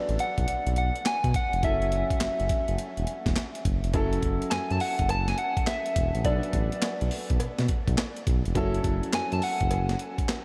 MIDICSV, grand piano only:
0, 0, Header, 1, 2, 480
1, 0, Start_track
1, 0, Tempo, 576923
1, 1356, Time_signature, 4, 2, 24, 8
1, 8693, End_track
2, 0, Start_track
2, 0, Title_t, "Grand piano"
2, 0, Program_c, 0, 0
2, 0, Control_c, 0, 64, 127
2, 0, Note_on_c, 0, 54, 61
2, 0, Note_on_c, 0, 59, 61
2, 0, Note_on_c, 0, 62, 58
2, 0, Note_on_c, 0, 69, 67
2, 1320, Note_off_c, 0, 54, 0
2, 1324, Note_off_c, 0, 59, 0
2, 1330, Note_off_c, 0, 69, 0
2, 1350, Note_on_c, 0, 54, 63
2, 1354, Note_off_c, 0, 62, 0
2, 1356, Note_on_c, 0, 61, 59
2, 1363, Note_on_c, 0, 64, 64
2, 1366, Control_c, 0, 64, 0
2, 1369, Note_on_c, 0, 69, 66
2, 1537, Control_c, 0, 64, 127
2, 3240, Note_off_c, 0, 54, 0
2, 3243, Note_off_c, 0, 61, 0
2, 3246, Note_off_c, 0, 64, 0
2, 3249, Note_off_c, 0, 69, 0
2, 3271, Note_on_c, 0, 54, 76
2, 3276, Note_on_c, 0, 61, 65
2, 3284, Note_on_c, 0, 64, 72
2, 3286, Control_c, 0, 64, 0
2, 3291, Note_on_c, 0, 69, 85
2, 3420, Control_c, 0, 64, 127
2, 5160, Note_off_c, 0, 54, 0
2, 5163, Note_off_c, 0, 61, 0
2, 5166, Note_off_c, 0, 64, 0
2, 5170, Note_off_c, 0, 69, 0
2, 5194, Note_on_c, 0, 54, 64
2, 5201, Note_on_c, 0, 59, 58
2, 5205, Control_c, 0, 64, 0
2, 5208, Note_on_c, 0, 62, 59
2, 5214, Note_on_c, 0, 69, 72
2, 5365, Control_c, 0, 64, 127
2, 7081, Note_off_c, 0, 54, 0
2, 7085, Note_off_c, 0, 59, 0
2, 7089, Note_off_c, 0, 62, 0
2, 7092, Note_off_c, 0, 69, 0
2, 7111, Note_on_c, 0, 54, 83
2, 7118, Note_on_c, 0, 61, 74
2, 7125, Note_on_c, 0, 64, 72
2, 7129, Control_c, 0, 64, 0
2, 7131, Note_on_c, 0, 69, 89
2, 7277, Control_c, 0, 64, 127
2, 8693, Note_off_c, 0, 54, 0
2, 8693, Note_off_c, 0, 61, 0
2, 8693, Note_off_c, 0, 64, 0
2, 8693, Note_off_c, 0, 69, 0
2, 8693, End_track
0, 0, End_of_file